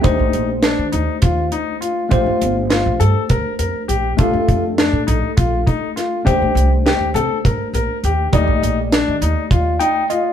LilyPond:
<<
  \new Staff \with { instrumentName = "Tine electric piano" } { \time 7/8 \key ees \lydian \tempo 4 = 102 << { r2. r8 | r2. r8 | r2. r8 | r2. r8 |
r2 r8 g''8 ees''8 | } \\ { <a d' g' c''>2.~ <a d' g' c''>8 | <a d' g' c''>2.~ <a d' g' c''>8 | <a d' g' a'>2.~ <a d' g' a'>8 | <a d' g' c''>2.~ <a d' g' c''>8 |
<a g' d'' ees''>2.~ <a g' d'' ees''>8 | } >> }
  \new Staff \with { instrumentName = "Grand piano" } { \time 7/8 \key ees \lydian ees'4 d'8 ees'8 f'8 ees'8 f'8 | f'4 f'8 a'8 bes'8 bes'8 g'8 | f'4 d'8 ees'8 f'8 ees'8 f'8 | g'4 g'8 a'8 bes'8 bes'8 g'8 |
ees'4 d'8 ees'8 f'8 ees'8 f'8 | }
  \new Staff \with { instrumentName = "Upright bass" } { \clef bass \time 7/8 \key ees \lydian ees,16 bes,,16 bes,,8. ees16 ees,16 r16 ees,8 r4 | bes,,16 f,16 g,,8. bes,,16 g,16 r16 d,16 r16 f,16 r16 bes,,8 | bes,,16 f,16 f,8. bes,16 bes,,16 r16 bes,,8 r4 | ees,16 bes,,16 c,8. ees,16 c16 r16 g,16 r16 bes,,16 r16 ees,8 |
ees,16 bes,,16 bes,,8. ees16 ees,16 r16 ees,8 r4 | }
  \new DrumStaff \with { instrumentName = "Drums" } \drummode { \time 7/8 <hh bd>8 hh8 <hh sn>8 hh8 <hh bd>8 hh8 hh8 | <hh bd>8 hh8 <hh sn>8 hh8 <hh bd>8 hh8 hh8 | <hh bd>8 <hh bd>8 <hh sn>8 hh8 <hh bd>8 <hh bd>8 <hh sn>8 | <hh bd>8 hh8 <hh sn>8 hh8 <hh bd>8 hh8 hh8 |
<hh bd>8 hh8 <hh sn>8 hh8 <hh bd>8 hh8 hh8 | }
>>